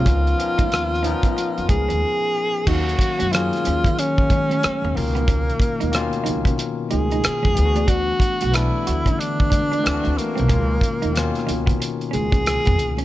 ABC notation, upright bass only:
X:1
M:4/4
L:1/16
Q:"Swing 16ths" 1/4=92
K:C#mix
V:1 name="Upright bass" clef=bass
C,,2 z D,,4 z2 E,, C,, D,, z4 | D,,2 z F,,2 z D,, D,4- D, z D,, C,,2- | C,,2 z D,,2 z C,, C, z2 C,,2 z E,, =D,,2- | =D,,2 z B,,,2 z D,, =D,4- D, D,, D,, z B,,, |
C,,2 z D,,2 z C,, C, z2 C,,3 E,, C,,2 |]